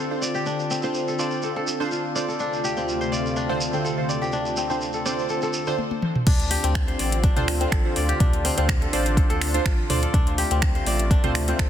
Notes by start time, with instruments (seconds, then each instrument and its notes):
Already playing: analog synth pad D3 C4 F4, kora C4 D4 G4 A4 C5 D5
0.11 synth keys D4 F4 A4 C5
0.22 kora D5, shekere
0.35 kora G4, shekere
0.46 kora D4, shekere
0.60 shekere
0.71 kora C4, shekere
0.82 kora C4, synth keys D4 F4 A4 C5, shekere
0.94 shekere
1.08 kora A4, shekere
1.19 synth keys D4 F4 A4 C5, kora D5, shekere
1.31 shekere
1.42 kora A4, shekere
1.56 kora A4
1.67 shekere
1.80 kora D4, synth keys D4 F4 A4 C5, shekere
1.91 kora F4, shekere
2.15 synth keys D4 F4 A4 C5, kora D5, shekere
2.28 kora A4, shekere
2.39 analog synth pad D2 C3 A3 F4, kora D4, shekere
2.53 shekere
2.64 kora G4, shekere
2.77 kora C4, shekere
2.89 shekere
3.01 kora C5, shekere
3.12 kora D5, shekere
3.26 shekere
3.36 kora D4, shekere
3.49 synth keys D3 C4 F4 A4 C5, kora C4
3.61 shekere
3.73 synth keys D3 C4 F4 A4 C5, kora C4, shekere
3.84 kora A4, shekere
3.98 synth keys D3 C4 F4 A4 C5
4.09 kora D5, shekere
4.22 kora G4, shekere
4.32 kora D4, shekere
4.45 shekere
4.57 kora C4, shekere
4.70 synth keys D3 C4 F4 A4 C5, kora C4, shekere
4.81 shekere
4.93 kora A4, shekere
5.05 synth keys D3 C4 F4 A4 C5, kora D5, shekere
5.19 shekere
5.29 kora A4, shekere
5.42 kora A4, shekere
5.53 shekere
5.66 synth keys D3 C4 F4 A4 C5, kora D4, shekere
5.78 high tom
5.91 high tom
6.02 mid tom
6.15 mid tom
6.27 sub bass D2, analog synth pad D3 C4 F4, kora D4, kick, closed hi-hat, mid tom, crash
6.39 closed hi-hat
6.50 kora G4, open hi-hat
6.63 sub bass D2, kora C4, closed hi-hat
6.75 finger snap, kick, closed hi-hat
6.88 kora C5, closed hi-hat
6.99 sub bass A1, kora D5, open hi-hat
7.12 closed hi-hat
7.23 kora D4, kick, closed hi-hat
7.36 sub bass D2, kora C4, synth keys D4 F4 A4 C5, closed hi-hat, mid tom
7.48 finger snap, open hi-hat
7.60 kora C4, synth keys D4 F4 A4 C5, closed hi-hat
7.71 sub bass A1, kora A4, finger snap, kick, closed hi-hat
7.85 synth keys D4 F4 A4 C5
7.96 sub bass D2, kora D5, open hi-hat
8.09 kora G4, closed hi-hat
8.20 sub bass D2, analog synth pad D4, kora D4, kick, closed hi-hat, mid tom
8.33 closed hi-hat
8.45 kora C4, open hi-hat
8.57 sub bass D2, kora C4, synth keys D4 F4 A4 C5, closed hi-hat
8.69 finger snap, kick, closed hi-hat, mid tom
8.82 kora A4, closed hi-hat
8.93 sub bass A1, synth keys D4 F4 A4 C5, kora D5, open hi-hat
9.06 closed hi-hat
9.17 kora A4, kick, closed hi-hat
9.30 sub bass D2, kora A4, closed hi-hat
9.41 finger snap, open hi-hat
9.54 kora D4, synth keys D4 F4 A4 C5, closed hi-hat
9.65 sub bass A1, kora F4, finger snap, kick, closed hi-hat
9.90 sub bass D2, synth keys D4 F4 A4 C5, kora D5, mid tom, open hi-hat
10.02 kora A4, closed hi-hat
10.14 sub bass D2, analog synth pad C3 A3, kora D4, kick, closed hi-hat, mid tom
10.27 closed hi-hat
10.38 kora G4, open hi-hat
10.51 sub bass D2, kora C4, closed hi-hat
10.62 finger snap, kick, closed hi-hat
10.75 kora C5, closed hi-hat
10.86 sub bass A1, kora D5, open hi-hat
10.99 closed hi-hat
11.11 kora D4, kick, closed hi-hat
11.23 sub bass D2, synth keys C4 F4 A4 C5, kora C4, closed hi-hat, mid tom
11.35 finger snap, open hi-hat
11.48 kora C4, synth keys C4 F4 A4 C5, closed hi-hat
11.59 sub bass A1, kora A4, finger snap, kick, closed hi-hat